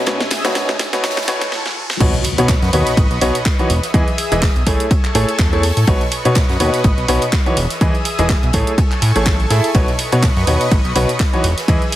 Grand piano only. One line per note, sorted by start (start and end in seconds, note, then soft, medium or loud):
0.07 0.19 B2 loud
0.07 0.19 D#4 medium
0.07 0.19 F#4 medium
0.07 0.19 B4 medium
0.07 0.19 C#5 loud
0.45 0.54 B2 medium
0.45 0.54 D#4 medium
0.45 0.54 F#4 medium
0.45 0.54 B4 medium
0.45 0.54 C#5 loud
0.55 0.67 B2 loud
0.55 0.67 D#4 medium
0.55 0.67 F#4 medium
0.55 0.67 B4 medium
0.55 0.67 C#5 loud
0.93 1.02 B2 medium
0.93 1.02 D#4 medium
0.93 1.02 F#4 medium
0.93 1.02 B4 medium
0.93 1.02 C#5 loud
1.04 1.15 B2 loud
1.04 1.15 D#4 medium
1.04 1.15 F#4 loud
1.04 1.15 B4 medium
1.04 1.15 C#5 loud
1.28 1.40 B2 loud
1.28 1.40 D#4 loud
1.28 1.40 F#4 medium
1.28 1.40 B4 medium
1.28 1.40 C#5 loud
2.00 2.12 B2 loud
2.00 2.12 D#4 medium
2.00 2.12 F#4 medium
2.00 2.12 B4 medium
2.00 2.12 C#5 loud
2.38 2.47 B2 loud
2.38 2.47 D#4 medium
2.38 2.47 F#4 medium
2.38 2.47 B4 medium
2.38 2.47 C#5 loud
2.73 2.91 B2 medium
2.73 2.91 D#4 medium
2.73 2.91 F#4 medium
2.73 2.91 B4 medium
2.73 2.91 C#5 medium
3.21 3.33 B2 loud
3.21 3.33 D#4 medium
3.21 3.33 F#4 medium
3.21 3.33 B4 medium
3.21 3.33 C#5 loud
3.59 3.68 E3 medium
3.59 3.68 D#4 medium
3.59 3.68 F#4 medium
3.59 3.68 B4 medium
3.59 3.68 C#5 medium
3.94 4.06 E3 loud
3.94 4.06 E4 medium
3.94 4.06 G#4 medium
3.94 4.06 B4 medium
3.94 4.06 D#5 loud
4.32 4.41 E3 loud
4.32 4.41 E4 medium
4.32 4.41 G#4 medium
4.32 4.41 B4 medium
4.32 4.41 D#5 loud
4.67 4.84 A3 medium
4.67 4.84 E4 medium
4.67 4.84 G#4 medium
4.67 4.84 A4 medium
4.67 4.84 C#5 medium
5.15 5.27 A3 loud
5.15 5.27 E4 medium
5.15 5.27 G#4 medium
5.15 5.27 A4 medium
5.15 5.27 C#5 loud
5.53 5.62 A3 medium
5.53 5.62 E4 medium
5.53 5.62 G#4 medium
5.53 5.62 A4 medium
5.53 5.62 C#5 loud
5.87 5.99 B2 loud
5.87 5.99 D#4 medium
5.87 5.99 F#4 medium
5.87 5.99 B4 medium
5.87 5.99 C#5 loud
6.25 6.34 B2 loud
6.25 6.34 D#4 medium
6.25 6.34 F#4 medium
6.25 6.34 B4 medium
6.25 6.34 C#5 loud
6.60 6.78 B2 medium
6.60 6.78 D#4 medium
6.60 6.78 F#4 medium
6.60 6.78 B4 medium
6.60 6.78 C#5 medium
7.08 7.20 B2 loud
7.08 7.20 D#4 medium
7.08 7.20 F#4 medium
7.08 7.20 B4 medium
7.08 7.20 C#5 loud
7.46 7.55 E3 medium
7.46 7.55 D#4 medium
7.46 7.55 F#4 medium
7.46 7.55 B4 medium
7.46 7.55 C#5 medium
7.81 7.93 E3 loud
7.81 7.93 E4 medium
7.81 7.93 G#4 medium
7.81 7.93 B4 medium
7.81 7.93 D#5 loud
8.19 8.28 E3 loud
8.19 8.28 E4 medium
8.19 8.28 G#4 medium
8.19 8.28 B4 medium
8.19 8.28 D#5 loud
8.54 8.71 A3 medium
8.54 8.71 E4 medium
8.54 8.71 G#4 medium
8.54 8.71 A4 medium
8.54 8.71 C#5 medium
9.16 9.31 A3 medium
9.16 9.31 E4 medium
9.16 9.31 G#4 medium
9.16 9.31 A4 medium
9.16 9.31 C#5 medium
9.50 9.68 E4 medium
9.50 9.68 G#4 medium
9.50 9.68 A4 medium
9.50 9.68 E5 medium
9.75 9.86 B2 loud
9.75 9.86 D#4 medium
9.75 9.86 F#4 medium
9.75 9.86 B4 medium
9.75 9.86 C#5 loud
10.12 10.22 B2 loud
10.12 10.22 D#4 medium
10.12 10.22 F#4 medium
10.12 10.22 B4 medium
10.12 10.22 C#5 loud
10.47 10.65 B2 medium
10.47 10.65 D#4 medium
10.47 10.65 F#4 medium
10.47 10.65 B4 medium
10.47 10.65 C#5 medium
10.96 11.07 B2 loud
10.96 11.07 D#4 medium
10.96 11.07 F#4 medium
10.96 11.07 B4 medium
10.96 11.07 C#5 loud
11.33 11.43 E3 medium
11.33 11.43 D#4 medium
11.33 11.43 F#4 medium
11.33 11.43 B4 medium
11.33 11.43 C#5 medium
11.68 11.80 E3 loud
11.68 11.80 E4 medium
11.68 11.80 G#4 medium
11.68 11.80 B4 medium
11.68 11.80 D#5 loud